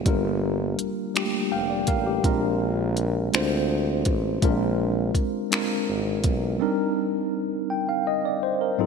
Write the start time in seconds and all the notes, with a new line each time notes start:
Already playing: G3 A#3 D4 F4 G4
0.05 G1 G3 A#3 D4 F4 A#4, kick, closed hi-hat
0.79 F1, closed hi-hat
1.14 G3 A3 D4 F4 G4, finger snap, closed hi-hat
1.21 A#3
1.52 F1 F5 G5
1.70 D5
1.87 A1 A#4 F5, kick, closed hi-hat
2.06 G4
2.23 A#1 G#3 C4 D4 F4 A#4, kick, closed hi-hat
2.97 closed hi-hat
3.32 D2 G#3 C4 D4 F4 C5, finger snap, closed hi-hat
4.05 A1, kick, closed hi-hat
4.42 A#1 G#3 C4 D4 F4 A#4, kick, closed hi-hat
5.15 G#1, kick, closed hi-hat
5.50 G#3 C4 D4 F4 A#4, finger snap, closed hi-hat
5.89 G#1
6.24 B1, kick, closed hi-hat
6.59 G3 C4 D4 D#4 A#4
7.70 G5
7.89 F5
8.07 D#5
8.25 D5
8.43 C5
8.61 A#4
8.78 G#2 F#3 C4 D#4 F4 A4